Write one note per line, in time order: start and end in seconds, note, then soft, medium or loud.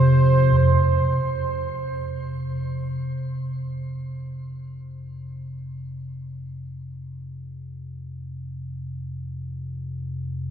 0.00 0.55 F2 medium
0.00 0.56 G#2 medium
0.00 0.55 C3 medium
0.00 0.56 F3 medium
0.00 0.56 C4 medium
0.00 0.56 G4 medium
0.00 0.58 C5 medium
0.56 10.51 F2 medium
0.56 10.51 C3 medium